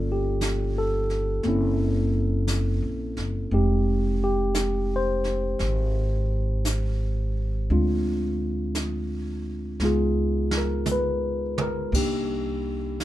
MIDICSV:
0, 0, Header, 1, 4, 480
1, 0, Start_track
1, 0, Tempo, 1038062
1, 1630, Time_signature, 4, 2, 24, 8
1, 2595, Tempo, 1056338
1, 5971, End_track
2, 0, Start_track
2, 0, Title_t, "Tine electric piano"
2, 0, Program_c, 0, 4
2, 0, Control_c, 0, 64, 127
2, 0, Note_on_c, 0, 58, 51
2, 0, Note_on_c, 0, 61, 51
2, 0, Note_on_c, 0, 65, 48
2, 0, Note_on_c, 0, 69, 58
2, 0, Note_on_c, 0, 74, 45
2, 55, Note_on_c, 0, 67, 62
2, 345, Note_off_c, 0, 67, 0
2, 357, Note_off_c, 0, 69, 0
2, 362, Note_on_c, 0, 69, 84
2, 659, Note_off_c, 0, 58, 0
2, 664, Note_on_c, 0, 58, 59
2, 669, Note_off_c, 0, 61, 0
2, 672, Note_on_c, 0, 60, 56
2, 674, Note_off_c, 0, 65, 0
2, 679, Control_c, 0, 64, 0
2, 679, Note_on_c, 0, 61, 60
2, 682, Note_off_c, 0, 74, 0
2, 686, Note_on_c, 0, 64, 66
2, 755, Control_c, 0, 64, 127
2, 818, Note_off_c, 0, 69, 0
2, 1624, Note_off_c, 0, 60, 0
2, 1626, Note_off_c, 0, 58, 0
2, 1630, Note_on_c, 0, 60, 55
2, 1631, Note_on_c, 0, 56, 59
2, 1633, Note_off_c, 0, 61, 0
2, 1635, Note_on_c, 0, 63, 53
2, 1636, Control_c, 0, 64, 0
2, 1637, Note_off_c, 0, 64, 0
2, 1638, Note_on_c, 0, 67, 64
2, 1721, Control_c, 0, 64, 127
2, 1954, Note_off_c, 0, 67, 0
2, 1960, Note_on_c, 0, 67, 77
2, 2258, Note_off_c, 0, 67, 0
2, 2293, Note_on_c, 0, 72, 80
2, 2745, Note_off_c, 0, 72, 0
2, 3540, Note_off_c, 0, 56, 0
2, 3545, Note_off_c, 0, 60, 0
2, 3545, Note_on_c, 0, 56, 58
2, 3548, Note_off_c, 0, 63, 0
2, 3549, Note_on_c, 0, 62, 53
2, 3550, Note_on_c, 0, 60, 48
2, 3552, Control_c, 0, 64, 0
2, 3554, Note_on_c, 0, 65, 60
2, 3634, Control_c, 0, 64, 127
2, 4499, Note_off_c, 0, 56, 0
2, 4503, Note_off_c, 0, 60, 0
2, 4503, Note_off_c, 0, 62, 0
2, 4504, Note_on_c, 0, 56, 54
2, 4505, Note_off_c, 0, 65, 0
2, 4508, Control_c, 0, 64, 0
2, 4508, Note_on_c, 0, 59, 50
2, 4514, Note_on_c, 0, 63, 51
2, 4514, Note_on_c, 0, 65, 60
2, 4520, Note_on_c, 0, 68, 65
2, 4576, Control_c, 0, 64, 127
2, 4832, Note_off_c, 0, 68, 0
2, 4850, Note_on_c, 0, 70, 72
2, 4988, Note_off_c, 0, 70, 0
2, 5005, Note_on_c, 0, 71, 75
2, 5318, Note_off_c, 0, 71, 0
2, 5323, Note_on_c, 0, 70, 79
2, 5466, Note_off_c, 0, 70, 0
2, 5468, Note_off_c, 0, 63, 0
2, 5468, Note_on_c, 0, 58, 52
2, 5469, Note_off_c, 0, 56, 0
2, 5471, Note_off_c, 0, 59, 0
2, 5473, Note_on_c, 0, 62, 47
2, 5473, Note_on_c, 0, 63, 50
2, 5474, Note_off_c, 0, 65, 0
2, 5474, Control_c, 0, 64, 0
2, 5477, Note_on_c, 0, 67, 59
2, 5560, Control_c, 0, 64, 127
2, 5971, Note_off_c, 0, 58, 0
2, 5971, Note_off_c, 0, 62, 0
2, 5971, Note_off_c, 0, 63, 0
2, 5971, Note_off_c, 0, 67, 0
2, 5971, End_track
3, 0, Start_track
3, 0, Title_t, "Upright bass"
3, 0, Program_c, 1, 32
3, 0, Note_on_c, 1, 31, 84
3, 652, Note_off_c, 1, 31, 0
3, 669, Note_on_c, 1, 30, 85
3, 1291, Note_off_c, 1, 30, 0
3, 1305, Note_on_c, 1, 34, 65
3, 1456, Note_off_c, 1, 34, 0
3, 1466, Note_on_c, 1, 30, 67
3, 1616, Note_off_c, 1, 30, 0
3, 1624, Note_on_c, 1, 29, 82
3, 2572, Note_off_c, 1, 29, 0
3, 2591, Note_on_c, 1, 32, 86
3, 3527, Note_off_c, 1, 32, 0
3, 3544, Note_on_c, 1, 38, 87
3, 4482, Note_off_c, 1, 38, 0
3, 4496, Note_on_c, 1, 37, 81
3, 5447, Note_off_c, 1, 37, 0
3, 5462, Note_on_c, 1, 36, 85
3, 5971, Note_off_c, 1, 36, 0
3, 5971, End_track
4, 0, Start_track
4, 0, Title_t, "Drums"
4, 190, Note_on_c, 9, 25, 38
4, 190, Note_on_c, 9, 38, 45
4, 190, Note_on_c, 9, 44, 54
4, 236, Note_off_c, 9, 38, 0
4, 236, Note_off_c, 9, 44, 0
4, 508, Note_on_c, 9, 38, 28
4, 554, Note_off_c, 9, 38, 0
4, 662, Note_off_c, 9, 25, 0
4, 662, Note_on_c, 9, 25, 38
4, 662, Note_on_c, 9, 38, 32
4, 709, Note_off_c, 9, 38, 0
4, 1145, Note_off_c, 9, 25, 0
4, 1145, Note_on_c, 9, 25, 31
4, 1145, Note_on_c, 9, 38, 48
4, 1145, Note_on_c, 9, 44, 49
4, 1191, Note_off_c, 9, 38, 0
4, 1191, Note_off_c, 9, 44, 0
4, 1464, Note_on_c, 9, 38, 26
4, 1510, Note_off_c, 9, 38, 0
4, 1622, Note_off_c, 9, 25, 0
4, 1622, Note_on_c, 9, 25, 30
4, 2102, Note_off_c, 9, 25, 0
4, 2102, Note_on_c, 9, 25, 33
4, 2102, Note_on_c, 9, 38, 49
4, 2102, Note_on_c, 9, 44, 55
4, 2149, Note_off_c, 9, 38, 0
4, 2149, Note_off_c, 9, 44, 0
4, 2423, Note_on_c, 9, 38, 29
4, 2470, Note_off_c, 9, 38, 0
4, 2586, Note_off_c, 9, 25, 0
4, 2586, Note_on_c, 9, 25, 37
4, 2586, Note_on_c, 9, 38, 33
4, 2631, Note_off_c, 9, 38, 0
4, 3067, Note_off_c, 9, 25, 0
4, 3067, Note_on_c, 9, 25, 39
4, 3067, Note_on_c, 9, 38, 49
4, 3067, Note_on_c, 9, 44, 61
4, 3112, Note_off_c, 9, 38, 0
4, 3112, Note_off_c, 9, 44, 0
4, 3542, Note_off_c, 9, 25, 0
4, 3542, Note_on_c, 9, 25, 39
4, 4021, Note_off_c, 9, 25, 0
4, 4021, Note_on_c, 9, 25, 35
4, 4021, Note_on_c, 9, 38, 47
4, 4021, Note_on_c, 9, 44, 50
4, 4066, Note_off_c, 9, 38, 0
4, 4066, Note_off_c, 9, 44, 0
4, 4497, Note_on_c, 9, 38, 46
4, 4542, Note_off_c, 9, 38, 0
4, 4732, Note_off_c, 9, 25, 0
4, 4822, Note_on_c, 9, 38, 67
4, 4867, Note_off_c, 9, 38, 0
4, 4979, Note_on_c, 9, 44, 58
4, 4979, Note_on_c, 9, 47, 59
4, 5024, Note_off_c, 9, 44, 0
4, 5024, Note_off_c, 9, 47, 0
4, 5306, Note_on_c, 9, 47, 82
4, 5351, Note_off_c, 9, 47, 0
4, 5466, Note_on_c, 9, 36, 67
4, 5472, Note_on_c, 9, 25, 32
4, 5472, Note_on_c, 9, 49, 65
4, 5511, Note_off_c, 9, 36, 0
4, 5517, Note_off_c, 9, 49, 0
4, 5953, Note_off_c, 9, 25, 0
4, 5953, Note_on_c, 9, 25, 45
4, 5953, Note_on_c, 9, 38, 48
4, 5953, Note_on_c, 9, 44, 56
4, 5971, Note_off_c, 9, 25, 0
4, 5971, Note_off_c, 9, 38, 0
4, 5971, Note_off_c, 9, 44, 0
4, 5971, End_track
0, 0, End_of_file